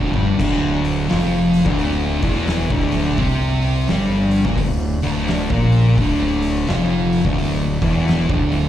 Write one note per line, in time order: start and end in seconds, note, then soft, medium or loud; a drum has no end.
0.00 0.13 D1 medium
0.00 0.13 D2 medium
0.00 0.14 D3 medium
0.14 0.38 G1 medium
0.14 0.39 G2 medium
0.14 0.40 G3 loud
0.14 kick loud
0.39 1.06 D1 medium
0.39 1.09 D2 medium
0.39 1.09 D3 loud
0.39 kick loud
0.39 crash loud
0.84 open hi-hat medium
1.09 1.64 F1 medium
1.09 1.65 F2 medium
1.09 1.66 F3 loud
1.09 snare loud
1.09 open hi-hat medium
1.53 open hi-hat medium
1.65 2.20 D1 loud
1.65 2.22 D2 medium
1.65 2.22 D3 medium
1.65 kick loud
1.65 snare soft
1.79 open hi-hat medium
2.22 2.68 E1 loud
2.22 2.70 E2 medium
2.22 2.70 E3 medium
2.22 kick loud
2.22 open hi-hat medium
2.47 snare loud
2.47 open hi-hat medium
2.70 3.15 D1 loud
2.70 3.18 D2 loud
2.70 3.18 D3 loud
2.70 kick loud
2.92 open hi-hat medium
3.17 3.85 C2 medium
3.17 3.88 C3 medium
3.17 3.89 C4 loud
3.17 kick loud
3.17 open hi-hat medium
3.62 open hi-hat medium
3.88 4.42 G1 medium
3.88 4.45 G2 medium
3.88 4.46 G3 loud
3.88 snare loud
3.88 open hi-hat medium
4.31 open hi-hat medium
4.45 4.57 A#1 loud
4.45 4.58 A#2 medium
4.45 4.58 A#3 loud
4.45 kick loud
4.45 snare soft
4.57 5.00 D1 medium
4.57 4.94 D2 medium
4.57 kick medium
4.57 open hi-hat medium
5.02 5.48 D1 medium
5.02 5.49 D2 medium
5.02 5.49 D3 medium
5.02 open hi-hat medium
5.28 snare loud
5.28 open hi-hat medium
5.50 5.95 A#1 loud
5.50 5.98 A#2 loud
5.50 5.98 A#3 loud
5.50 kick loud
5.72 open hi-hat medium
5.98 6.64 D1 medium
5.98 6.68 D2 medium
5.98 6.68 D3 loud
5.98 kick loud
5.98 open hi-hat medium
6.42 open hi-hat medium
6.67 7.21 F1 medium
6.67 7.24 F2 medium
6.67 7.25 F3 loud
6.67 snare loud
6.67 open hi-hat medium
7.13 open hi-hat medium
7.25 7.78 D1 loud
7.25 7.81 D2 medium
7.25 7.81 D3 medium
7.25 kick loud
7.25 snare soft
7.39 open hi-hat medium
7.82 8.26 E1 medium
7.82 8.29 E2 medium
7.82 8.29 E3 loud
7.82 kick loud
7.82 open hi-hat medium
8.08 snare loud
8.08 open hi-hat medium
8.30 8.69 D1 loud
8.30 8.69 D2 medium
8.30 8.69 D3 loud
8.30 kick loud
8.52 open hi-hat medium